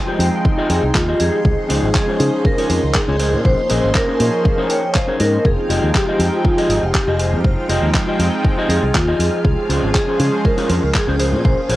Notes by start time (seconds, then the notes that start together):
Already playing: F3 G#3 C4 D#4 G5 C6
0.07 F4 G4 G#4 C5
0.19 F2, open hi-hat
0.44 muted clean electric guitar stroke, kick
0.57 F4 G4 G#4 D#5
0.70 F2 G#4, open hi-hat
0.83 C2
0.95 D#2 F4, kick, clap
1.08 F4 G4 G#4 D#5
1.20 F2 G#4, open hi-hat
1.45 C#2, kick
1.68 C#2 C#4 F4 G#4 C5, open hi-hat
1.82 G#1 F3 G#3 C#4 G#4 C5
1.95 G#4, kick, clap
2.07 C#4 F4 G#4 C5
2.20 C#3, open hi-hat
2.45 A#4, muted clean electric guitar stroke, kick
2.57 C#4 F4 G#4 C#5, open hi-hat
2.70 F2, open hi-hat
2.83 C#2
2.94 G#4, kick, clap
3.08 C#2 C#4 F4 G#4 C#5
3.19 C#4 G#4 A#4 C5, open hi-hat
3.33 A#2
3.45 A#1 C5, kick
3.69 A#1 C#4 G#4 A#4 D#5, open hi-hat
3.83 G#1 F3 A#3 C#4 G#4 C5
3.95 A#4, kick, clap
4.08 C#4 G#4 A#4 C5
4.20 A#2, open hi-hat
4.45 kick
4.58 C#4 G#4 A#4 C5
4.70 C#5 G5, open hi-hat
4.94 C5 F5, kick, clap
5.07 C#4 G#4 A#4 C#5
5.20 G#2 A#4 D#5, open hi-hat
5.45 F1 F4 G#4 F5, kick
5.69 F1 F4 G4 G#4 D#5, open hi-hat
5.82 D#2 F3 G#3 C4 D#4 G5
5.95 G4, kick, clap
6.07 F4 G4 G#4 D#5
6.19 F2, open hi-hat
6.34 F4
6.45 F4, kick
6.57 F4 G4 G#4 D#5, open hi-hat
6.69 G#1 G4, open hi-hat
6.83 F1
6.95 G4, kick, clap
7.07 F1 F4 G4 G#4 D#5
7.20 C5, open hi-hat
7.33 F2
7.44 F1, kick
7.69 F1 F4 G4 G#4 D#5, open hi-hat
7.82 D#2 F3 G#3 C4 D#4 G5
7.94 kick, clap
8.07 F4 G4 G#4 D#5
8.19 F2, open hi-hat
8.44 muted clean electric guitar stroke, kick
8.58 F4 G4 G#4 D#5
8.69 F2 G#4, open hi-hat
8.83 C2
8.95 D#2 F4, kick, clap
9.07 F4 G4 G#4 D#5
9.19 F2 G#4, open hi-hat
9.45 C#2, kick
9.69 C#2 C#4 F4 G#4 C5, open hi-hat
9.82 G#1 F3 G#3 C#4 G#4 C5
9.95 G#4, kick, clap
10.08 C#4 F4 G#4 C5
10.19 C#3, open hi-hat
10.44 A#4, muted clean electric guitar stroke, kick
10.57 C#4 F4 G#4 A#4, open hi-hat
10.70 F2, open hi-hat
10.83 C#2
10.94 G#4, kick, clap
11.07 C#2 C#4 F4 G#4 C5
11.19 C#4 G#4 A#4 C5, open hi-hat
11.33 A#2
11.45 A#1 C5, kick
11.69 A#1 C#4 G#4 A#4 C#5, open hi-hat